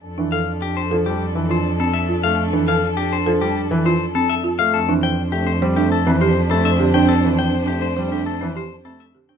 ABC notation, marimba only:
X:1
M:4/4
L:1/16
Q:1/4=102
K:F
V:1 name="Marimba"
z D A z3 A z3 F z C z F z | z D A z3 A z3 F z C z F z | z D c z3 c D z C G z C z G D | z D c z3 c D z C G z C z G D |]